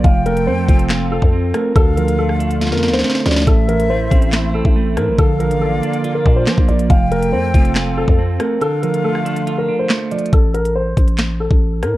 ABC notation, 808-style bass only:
X:1
M:4/4
L:1/16
Q:1/4=140
K:Aphr
V:1 name="808-style bass" clef=bass
F,,,4 F,,2 F,,,4- F,,, F,,3 z2 | D,,8- D,, F,,3/2 D,,3/2 z2 D,,2 | A,,,6 A,,,4- A,,, A,,,3 A,, A,,, | B,,,3 A,,,3 z4 B,,2 F, B,,, B,,,2 |
F,,,4 F,,2 F,,,4- F,,, F,,3 z2 | z16 | A,,,6 A,,,4- A,,, A,,,3 A,, A,,, |]